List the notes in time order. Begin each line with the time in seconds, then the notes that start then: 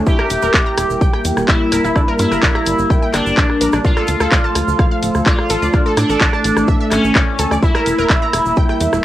0.06 E1 G3 A#3 E4 G4 A#4 E5, kick, shaker
0.19 A#4 A#5, cross-stick
0.30 E1, open hi-hat, shaker
0.42 E1 A#4 A#5, shaker
0.54 E1 E5 E6, kick, cross-stick, clap, shaker
0.66 A#5 A#6
0.78 E1, cross-stick, open hi-hat, shaker
0.90 E1, shaker
1.01 E1 G5 G6, kick, shaker
1.13 G5 G6, cross-stick
1.25 E2, open hi-hat, shaker
1.37 E1, cross-stick, shaker
1.48 E1 E4 E5 E6, kick, clap, shaker
1.72 D1 A#4 A#5, cross-stick, open hi-hat, shaker
1.84 E1 E4 E5, shaker
1.96 G1 D4 D5, kick, cross-stick, shaker
2.08 A#4 A#5
2.19 G2 E4, open hi-hat, shaker
2.31 G1 A#4 A#5, cross-stick, shaker
2.43 G1 D5 D6, kick, clap, shaker
2.55 A#5 A#6, cross-stick
2.66 G1, open hi-hat, shaker
2.79 G1, shaker
2.90 G1 G5 G6, kick, cross-stick, shaker
3.02 G5 G6
3.13 G1 D4, cross-stick, clap, open hi-hat, shaker
3.26 G1, shaker
3.37 A#1 D5 D6, kick, clap, shaker
3.50 cross-stick
3.61 A#1 A#4 A#5, open hi-hat, shaker
3.72 A#1 D4 D5, cross-stick, shaker
3.85 D2 F3 A3 D4 F4 A4 D5, kick, shaker
3.97 A4 A5, cross-stick
4.08 D2, open hi-hat, shaker
4.20 D2 A4 A5, cross-stick, shaker
4.32 D2 D5 D6, kick, clap, shaker
4.44 A5 A6
4.55 D2, cross-stick, open hi-hat, shaker
4.68 D2, shaker
4.79 D2 F5 F6, kick, cross-stick, shaker
4.91 F5 F6
5.03 D1, open hi-hat, shaker
5.15 D2, cross-stick, shaker
5.26 D2 F4 D5 D6, kick, clap, shaker
5.39 cross-stick
5.50 A1 A4 A5, open hi-hat, shaker
5.62 D2 D5 D6, shaker
5.73 A1 E3 A3 D4 A4 D5, kick, cross-stick, shaker
5.86 A4 A5
5.97 A2 D4, cross-stick, open hi-hat, shaker
6.09 A1 A4 A5, shaker
6.21 A1 D5 D6, kick, clap, shaker
6.33 A5 A6, cross-stick
6.44 A1, open hi-hat, shaker
6.57 A1, cross-stick, shaker
6.67 A1 E5 E6, kick, shaker
6.80 E5 E6
6.91 A1 C#4, cross-stick, clap, open hi-hat, shaker
7.04 A1, shaker
7.15 D2 D5 D6, kick, cross-stick, clap, shaker
7.39 D2 A4 A5, open hi-hat, shaker
7.51 D2 D5 D6, cross-stick, shaker
7.62 E1 G3 A#3 E4 A#4 E5, kick, shaker
7.75 A#4 A#5, cross-stick
7.86 E1, open hi-hat, shaker
7.98 E1 A#4 A#5, shaker
8.10 E1 E5 E6, kick, cross-stick, clap, shaker
8.22 A#5 A#6
8.33 E1, cross-stick, open hi-hat, shaker
8.46 E1, shaker
8.56 E1 G5 G6, kick, shaker
8.69 G5 G6, cross-stick
8.81 E2, open hi-hat, shaker
8.93 E1, cross-stick, shaker